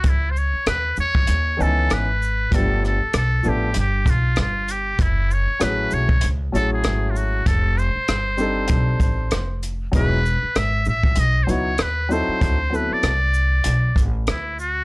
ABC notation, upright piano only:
X:1
M:4/4
L:1/8
Q:"Swing 16ths" 1/4=97
K:E
V:1 name="Upright piano"
z4 z [D,E,B,CDg] z2 | [=F,A,B,=D=G] z2 [F,A,B,DA] z4 | z2 [F,A,CEG] z2 [F,A,CEG]3 | z3 [=G,=C=D_EA]3 z2 |
[F,B,DEG] z4 [F,B,DEF] z [F,^B,DEA] | z [F,B,=CEA] z6 |]